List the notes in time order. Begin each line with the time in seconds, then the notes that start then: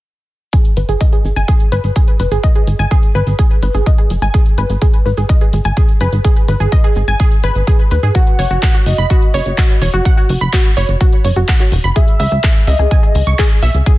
0.53 G#4, kick, closed hi-hat, shaker
0.65 closed hi-hat
0.76 G#1 B4, closed hi-hat, shaker
0.89 G#1 G#4, closed hi-hat, shaker
1.00 D#5, kick, closed hi-hat, shaker
1.13 G#4, closed hi-hat
1.25 G#1, shaker
1.36 G#1 G#5, closed hi-hat, shaker
1.48 G#4, kick, closed hi-hat, shaker
1.60 closed hi-hat
1.72 G#1 B4, closed hi-hat, shaker
1.84 G#1, closed hi-hat, shaker
1.96 G#4, kick, closed hi-hat, shaker
2.08 closed hi-hat
2.20 F#1 B4, closed hi-hat, shaker
2.32 G#1 G#4, closed hi-hat, shaker
2.43 D#5, kick, closed hi-hat, shaker
2.55 G#4, closed hi-hat
2.67 G#1, closed hi-hat, shaker
2.79 G#1 G#5, closed hi-hat, shaker
2.91 G#4, kick, closed hi-hat, shaker
3.03 closed hi-hat
3.15 G#1 B4, shaker
3.27 G#1, closed hi-hat, shaker
3.39 G#4, kick, closed hi-hat, shaker
3.51 closed hi-hat
3.62 G#1 B4, closed hi-hat, shaker
3.74 G#1 G#4, closed hi-hat, shaker
3.86 D#5, kick, closed hi-hat, shaker
3.98 G#4, closed hi-hat
4.10 F#1, closed hi-hat, shaker
4.22 G#1 G#5, closed hi-hat, shaker
4.34 G#4, kick, closed hi-hat, shaker
4.46 closed hi-hat
4.58 G#1 B4, closed hi-hat, shaker
4.70 G#1, closed hi-hat, shaker
4.82 G#4, kick, closed hi-hat, shaker
4.94 closed hi-hat
5.06 G#1 B4, shaker
5.17 G#1 G#4, closed hi-hat, shaker
5.29 D#5, kick, closed hi-hat, shaker
5.41 G#4, closed hi-hat
5.53 G#1, closed hi-hat, shaker
5.64 G#1 G#5, closed hi-hat, shaker
5.77 G#4, kick, closed hi-hat, shaker
5.89 closed hi-hat
6.00 F#1 B4, closed hi-hat, shaker
6.13 G#1, closed hi-hat, shaker
6.24 G#4, kick, closed hi-hat, shaker
6.36 closed hi-hat
6.48 G#1 B4, closed hi-hat, shaker
6.60 G#1 G#4, closed hi-hat, shaker
6.72 D#5, kick, closed hi-hat, shaker
6.84 G#4, closed hi-hat
6.95 G#1, shaker
7.07 G#1 G#5, closed hi-hat, shaker
7.20 G#4, kick, closed hi-hat, shaker
7.32 closed hi-hat
7.43 G#1 B4, closed hi-hat, shaker
7.55 G#1, closed hi-hat, shaker
7.67 G#4, kick, closed hi-hat, shaker
7.79 closed hi-hat
7.91 D#2 B4, closed hi-hat, shaker
8.03 G#2 G#4, closed hi-hat, shaker
8.15 F#4 F#5, kick, closed hi-hat, shaker
8.27 closed hi-hat
8.39 F#1 C#5, open hi-hat, shaker
8.50 F#1 F#4, closed hi-hat, shaker
8.62 F#5, kick, clap, closed hi-hat, shaker
8.74 F#4, closed hi-hat
8.86 F#1 D#5, open hi-hat, shaker
8.98 F#1 B5, closed hi-hat, shaker
9.10 F#4, kick, closed hi-hat, shaker
9.22 closed hi-hat
9.34 F#1 C#5, open hi-hat, shaker
9.46 F#1, closed hi-hat, shaker
9.58 F#4, kick, clap, closed hi-hat, shaker
9.70 closed hi-hat
9.82 E1 C#5, open hi-hat, shaker
9.93 F#1 F#4, closed hi-hat, shaker
10.05 F#5, kick, closed hi-hat, shaker
10.17 F#4, closed hi-hat
10.29 F#1, open hi-hat, shaker
10.41 F#1 B5, closed hi-hat, shaker
10.53 F#4, kick, clap, closed hi-hat, shaker
10.65 closed hi-hat
10.77 F#1 C#5, open hi-hat, shaker
10.89 F#1, closed hi-hat, shaker
11.00 F#4, kick, closed hi-hat, shaker
11.13 closed hi-hat
11.24 F#1 C#5, open hi-hat, shaker
11.36 F#1 F#4, closed hi-hat, shaker
11.48 F#5, kick, clap, closed hi-hat, shaker
11.60 F#4, clap, closed hi-hat
11.72 E1, open hi-hat, shaker
11.84 F#1 B5, closed hi-hat, shaker
11.96 G#4 E5, kick, closed hi-hat, shaker
12.08 closed hi-hat
12.20 C#2 E5, open hi-hat, shaker
12.32 C#2, closed hi-hat, shaker
12.43 G#4, kick, clap, closed hi-hat, shaker
12.55 closed hi-hat
12.67 C#2 D#5 E5, open hi-hat, shaker
12.79 C#2 G#4, closed hi-hat, shaker
12.91 G#5, kick, closed hi-hat, shaker
13.03 G#4, closed hi-hat
13.15 C#2, open hi-hat, shaker
13.27 C#2 C#6, closed hi-hat, shaker
13.39 G#4, kick, clap, closed hi-hat, shaker
13.51 closed hi-hat
13.62 B1 E5, open hi-hat, shaker
13.74 C#2, closed hi-hat, shaker
13.86 G#4, kick, closed hi-hat, shaker